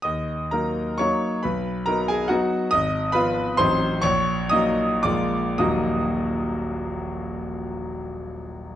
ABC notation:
X:1
M:3/4
L:1/8
Q:1/4=125
K:Ebm
V:1 name="Grand piano"
[ee']2 [Bb]2 [dd']2 | [=B=b]2 [_B_b] [Aa] [^F^f]2 | [ee']2 [cc']2 [=c=c']2 | [dd']2 [ee']2 [=d=d']2 |
[E,,,B,,,G,B,EGe']6- | [E,,,B,,,G,B,EGe']6 |]
V:2 name="Grand piano"
E,,2 [G,B,E]2 [G,B,E]2 | =B,,,2 [^F,=B,^D]2 [F,B,D]2 | A,,,2 [F,CF]2 [=A,,,^F,=CE]2 | B,,,2 [G,B,E]2 [B,,,A,B,F]2 |
z6 | z6 |]